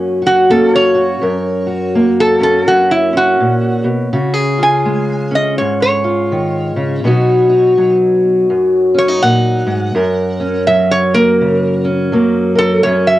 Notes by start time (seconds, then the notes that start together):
Already playing: F#2 A#3 C#4 F#4
0.22 F#4
0.26 F#4
0.50 A#3 C#4 A4
0.76 C#5
0.94 F#4
1.22 F#2 A#4
1.67 F#4
1.95 A#3
2.20 A4
2.40 C#4 A4
2.68 F#2 F#4
2.91 E4
3.13 C#4
3.17 F#4
3.40 A#2
3.84 B2
4.13 C#3 F#4
4.34 G#4
4.58 F4
4.63 G#5
4.86 G#3
5.31 C#4
5.35 D#5
5.58 G#2 C#5
5.82 C#5
6.04 F4
6.32 D#3
6.76 C#3
7.04 B2 F#3 B3 D#4 F#4
7.49 D#4
7.77 F#3
8.50 F#2
8.94 C#4 C#5
9.08 D#4
9.22 A#2 F#5
9.67 G#2
9.95 F#2 A#4
10.40 C#4
10.67 F#3 E5
10.91 C#5
11.14 A#3 A#4
11.41 C#3
11.84 C#4
12.12 F#3 A#3
12.55 A4 A#4
12.83 F#2 C#4 C#5
13.07 E5